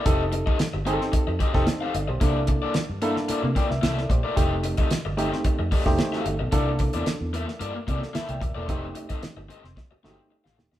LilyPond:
<<
  \new Staff \with { instrumentName = "Overdriven electric guitar" } { \time 4/4 \key f \major \tempo 4 = 111 <c' g' a' ees''>16 r8 <c' g' a' ees''>16 r8 <c' g' a' ees''>16 r8. <c' g' a' ees''>16 <c' g' a' ees''>16 r16 <c' g' a' f''>16 r8 | <bes e' a' d''>16 r8 <bes e' a' d''>16 r8 <bes e' a' e''>16 r16 <bes e' a' d''>16 r16 <bes e' a' d''>16 r16 <bes e' a' e''>16 r8 <bes e' a' d''>16 | <c' g' a' ees''>16 r8 <c' g' a' ees''>16 r8 <c' g' a' ees''>16 r8. <c' g' a' ees''>16 r8 <c' g' a' f''>16 r8 | <bes e' a' d''>16 r8 <bes e' a' d''>16 r8 <bes e' a' e''>16 r16 <bes e' a' d''>16 r16 <bes e' a' d''>16 r16 <bes e' a' e''>16 r8 <bes e' a' d''>16 |
<c' g' a' ees''>16 r8 <c' g' a' ees''>16 r8 <c' g' a' ees''>16 r8. <c' g' a' ees''>16 r8 <c' g' a' f''>16 r8 | }
  \new Staff \with { instrumentName = "Reed electric piano" } { \time 4/4 \key f \major << { e'16 r2. <c'' f''>16 <a' d''>16 <g' c''>16~ | <g' c''>16 r2 r16 <d'' g''>16 <bes' e''>8 <a' d''>16 <g' c''>16 <e' bes'>16~ | <e' bes'>16 r2 r16 d''8 c''8 a'8 | r2 r8. <a' d''>16 <bes' e''>16 <d'' g''>16 <bes' e''>16 <a' d''>16~ |
<a' d''>16 r2. r8. | } \\ { <c' ees' g' a'>4 r8 <c' ees' g' aes' a'>4 r16 <c' ees' g' a'>4 r16 | <bes d' e' a'>4 r8 <bes d' e' a'>4 r4. | <a c' ees' g'>4 r8 <a c' ees' g'>4 r16 <a c' ees' g'>4 r16 | <bes d' e' a'>4. r2 r8 |
<a c' ees' g'>4. r4 <a c' ees' fis' g'>8. r16 <a c' ees' g'>16 r16 | } >> }
  \new Staff \with { instrumentName = "Fingered electric bass" } { \clef bass \time 4/4 \key f \major f,,8. r8 g,,8 r8 f,16 r16 f,,16 r8 g,,16 b,,16 | c,8. r8 g,8 r8 c16 r16 c,16 c,8 bes,,16 r16 | f,,8. r8 g,,8 r8 f,16 r16 f,,16 r8 g,,16 b,,16 | c,8. e,16 r16 e,8 r16 g,16 r16 c16 r8 c,16 ees,,16 e,,16 |
f,,8 r8. g,,16 r16 f,,16 r8 g,,16 r8 a,,16 ees,,16 e,,16 | }
  \new DrumStaff \with { instrumentName = "Drums" } \drummode { \time 4/4 <hh bd>8 hh16 bd16 <hh sn>8 hh16 sn16 <hh bd>8 <hh bd>16 <bd sn>16 <hh sn>8 hh8 | <hh bd>8 <hh bd>8 <hh sn>8 hh16 sn16 hh8 <hh bd>16 sn16 <hh sn>16 sn16 <hh bd>8 | <hh bd>8 hh16 <hh bd>16 <hh sn>8 hh16 sn16 <hh bd>8 <hho bd>16 <bd sn>16 <hh sn>16 sn16 hh8 | <hh bd>8 <hh bd>16 hh16 <hh sn>8 hh16 sn16 hh8 <hh bd>16 sn16 <hh sn>16 hh16 <hh bd>8 |
<hh bd>8 hh16 <hh bd>16 <hh sn>8 hh16 sn16 <bd sn>8 sn8 r16 sn16 sn16 sn16 | }
>>